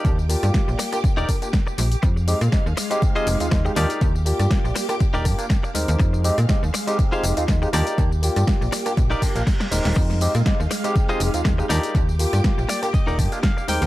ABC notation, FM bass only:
X:1
M:4/4
L:1/16
Q:"Swing 16ths" 1/4=121
K:Eb
V:1 name="FM bass" clef=bass
E,,2 z G,, z B,,, z3 E,,, z4 B,,, z | F,,2 z B,, z E,, z4 F,,, E,, E,, z E,, z | E,,2 z G,, z B,,, z3 E,,, G,, z3 E,, E,, | F,,2 z B,, z E,, z4 F,,, E,, E,, z E,, z |
E,,2 z G,, z B,,, z2 B,,, z2 B,,, z2 E,,, E,,, | F,,2 z B,, z E,, z4 F,,, E,, E,, z E,, z | E,,2 z G,, z B,,, z3 E,,, G,, z3 E,, E,, |]